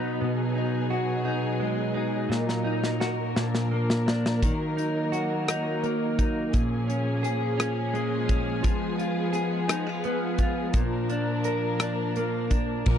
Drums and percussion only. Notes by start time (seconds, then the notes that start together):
2.32 snare
2.49 snare
2.84 snare
3.01 snare
3.36 snare
3.55 snare
3.90 snare
4.08 snare
4.26 snare
4.43 kick, closed hi-hat
4.78 closed hi-hat
5.13 closed hi-hat
5.48 cross-stick, closed hi-hat
5.84 closed hi-hat
6.19 kick, closed hi-hat
6.53 kick, closed hi-hat
6.90 closed hi-hat
7.24 closed hi-hat
7.60 cross-stick, closed hi-hat
7.95 closed hi-hat
8.29 kick, closed hi-hat
8.64 kick, closed hi-hat
8.99 closed hi-hat
9.33 closed hi-hat
9.69 cross-stick, closed hi-hat
10.04 closed hi-hat
10.38 kick, closed hi-hat
10.73 kick, closed hi-hat
11.09 closed hi-hat
11.44 closed hi-hat
11.80 cross-stick, closed hi-hat
12.16 closed hi-hat
12.51 kick, closed hi-hat
12.86 kick, crash